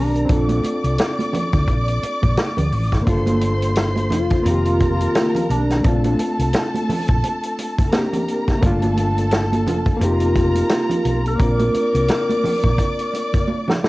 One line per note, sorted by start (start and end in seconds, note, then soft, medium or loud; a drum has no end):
0.00 0.24 B1 loud
0.00 0.26 D#3 medium
0.00 0.24 C4 medium
0.00 0.60 D4 medium
0.00 0.27 G4 medium
0.00 0.27 A#4 medium
0.00 0.28 A#4 medium
0.00 0.27 A#5 loud
0.15 closed hi-hat soft
0.25 3.01 C4 medium
0.25 3.02 D4 medium
0.25 closed hi-hat medium
0.29 0.59 A#1 loud
0.29 3.03 F4 medium
0.29 3.04 A4 medium
0.29 3.03 D5 medium
0.29 3.03 D6 loud
0.29 kick loud
0.29 muted conga soft
0.49 closed hi-hat medium
0.49 high conga medium
0.64 closed hi-hat medium
0.64 muted conga soft
0.84 0.97 C2 medium
0.84 closed hi-hat medium
0.98 snare loud
0.98 closed hi-hat loud
1.19 closed hi-hat medium
1.19 high conga medium
1.33 muted fingered electric bass stroke soft
1.33 closed hi-hat medium
1.33 muted conga soft
1.33 low conga medium
1.53 1.66 D2 medium
1.53 kick medium
1.53 closed hi-hat medium
1.68 1.98 A#1 medium
1.68 kick medium
1.68 closed hi-hat loud
1.88 closed hi-hat medium
2.02 muted fingered electric bass stroke medium
2.02 closed hi-hat medium
2.02 muted conga soft
2.22 2.36 A#1 medium
2.22 kick loud
2.22 closed hi-hat medium
2.22 high conga soft
2.37 snare loud
2.37 closed hi-hat loud
2.37 muted conga soft
2.37 high conga medium
2.57 2.70 D2 medium
2.57 closed hi-hat medium
2.57 low conga medium
2.72 2.89 A1 loud
2.72 open hi-hat medium
2.92 3.05 G#1 medium
2.92 kick medium
2.92 snare soft
2.92 closed hi-hat soft
3.03 4.41 A#3 medium
3.03 4.42 D4 medium
3.07 4.11 G1 loud
3.07 4.43 F4 medium
3.07 4.45 A4 medium
3.07 4.43 C5 medium
3.07 4.43 C6 loud
3.07 kick loud
3.07 closed hi-hat loud
3.07 muted conga soft
3.26 closed hi-hat medium
3.26 high conga medium
3.41 closed hi-hat medium
3.62 closed hi-hat medium
3.76 snare loud
3.76 closed hi-hat loud
3.76 muted conga soft
3.96 closed hi-hat medium
3.96 high conga medium
4.10 4.41 F1 medium
4.10 5.46 F4 loud
4.10 closed hi-hat medium
4.10 muted conga soft
4.10 low conga medium
4.30 kick loud
4.30 closed hi-hat medium
4.42 5.05 F1 loud
4.42 5.80 A#3 medium
4.42 5.81 C4 medium
4.42 5.82 A#4 loud
4.42 5.81 A#5 medium
4.42 closed hi-hat medium
4.47 5.83 D#3 medium
4.47 5.84 G4 medium
4.65 closed hi-hat medium
4.80 kick loud
4.80 closed hi-hat medium
4.80 muted conga soft
5.00 closed hi-hat medium
5.00 high conga soft
5.15 snare loud
5.15 closed hi-hat loud
5.15 muted conga soft
5.15 high conga medium
5.35 closed hi-hat medium
5.35 low conga medium
5.50 5.80 B1 medium
5.50 6.16 D4 medium
5.50 closed hi-hat medium
5.50 muted conga soft
5.70 snare soft
5.70 closed hi-hat soft
5.81 6.15 A#1 loud
5.81 7.87 A3 medium
5.81 7.88 C4 medium
5.81 7.89 A5 loud
5.81 kick loud
5.81 closed hi-hat loud
5.85 7.89 D4 medium
5.85 7.91 F4 medium
5.85 7.89 A4 medium
5.85 muted conga soft
6.04 closed hi-hat medium
6.04 high conga medium
6.19 closed hi-hat medium
6.39 6.52 C2 medium
6.39 closed hi-hat medium
6.53 snare loud
6.53 closed hi-hat medium
6.53 muted conga soft
6.74 closed hi-hat medium
6.74 high conga medium
6.89 muted fingered electric bass stroke soft
6.89 open hi-hat medium
6.89 muted conga soft
6.89 low conga medium
7.08 7.21 A#1 medium
7.08 kick loud
7.08 closed hi-hat medium
7.23 closed hi-hat medium
7.23 muted conga soft
7.43 closed hi-hat medium
7.58 closed hi-hat medium
7.58 muted conga soft
7.78 kick loud
7.78 closed hi-hat medium
7.78 high conga soft
7.91 8.60 A#3 medium
7.91 8.62 C4 medium
7.91 8.62 D4 medium
7.91 8.63 G4 medium
7.91 8.61 A#4 medium
7.91 8.61 A#5 medium
7.91 snare loud
7.91 closed hi-hat loud
7.91 high conga medium
8.13 closed hi-hat medium
8.13 low conga medium
8.28 closed hi-hat medium
8.48 kick medium
8.48 snare soft
8.48 closed hi-hat soft
8.58 9.96 A3 medium
8.58 9.96 A#3 medium
8.62 9.66 G1 loud
8.62 9.99 D4 medium
8.62 10.00 F4 loud
8.62 9.98 A4 loud
8.62 9.98 A5 loud
8.62 kick loud
8.62 closed hi-hat loud
8.62 muted conga soft
8.82 closed hi-hat medium
8.82 high conga medium
8.97 closed hi-hat medium
8.97 muted conga soft
9.18 closed hi-hat medium
9.31 snare loud
9.31 closed hi-hat loud
9.52 closed hi-hat medium
9.52 high conga medium
9.66 9.96 F1 medium
9.66 11.22 F4 loud
9.66 closed hi-hat medium
9.66 low conga medium
9.86 kick loud
9.86 closed hi-hat medium
9.97 10.61 F1 loud
9.97 11.35 A#3 medium
9.97 11.36 C4 medium
10.01 11.38 D#4 medium
10.01 11.39 G4 medium
10.01 11.37 A#4 medium
10.01 11.37 A#5 loud
10.01 closed hi-hat loud
10.01 muted conga soft
10.20 closed hi-hat medium
10.35 kick loud
10.35 closed hi-hat medium
10.35 muted conga soft
10.55 closed hi-hat medium
10.55 high conga soft
10.69 snare loud
10.69 closed hi-hat loud
10.69 high conga medium
10.89 closed hi-hat medium
10.89 low conga medium
11.05 11.35 B1 medium
11.05 closed hi-hat medium
11.05 muted conga soft
11.26 13.45 A#4 loud
11.26 closed hi-hat soft
11.36 11.70 A#1 loud
11.36 13.89 A#3 medium
11.36 13.89 C4 medium
11.36 13.89 D5 medium
11.36 13.89 D6 loud
11.36 kick loud
11.36 closed hi-hat loud
11.41 13.89 D4 medium
11.41 13.89 F4 medium
11.59 closed hi-hat medium
11.59 high conga medium
11.74 muted fingered electric bass stroke soft
11.74 closed hi-hat medium
11.74 muted conga soft
11.95 12.07 C2 loud
11.95 closed hi-hat medium
12.08 snare loud
12.08 closed hi-hat loud
12.29 closed hi-hat medium
12.29 high conga medium
12.44 muted fingered electric bass stroke soft
12.44 open hi-hat medium
12.44 low conga medium
12.64 12.77 A#1 medium
12.64 kick medium
12.64 closed hi-hat medium
12.78 kick medium
12.78 closed hi-hat loud
12.99 closed hi-hat medium
13.13 closed hi-hat medium
13.13 muted conga soft
13.33 kick loud
13.33 closed hi-hat medium
13.33 high conga soft
13.48 high conga medium
13.68 snare medium
13.68 low conga medium
13.83 snare loud
13.83 muted conga soft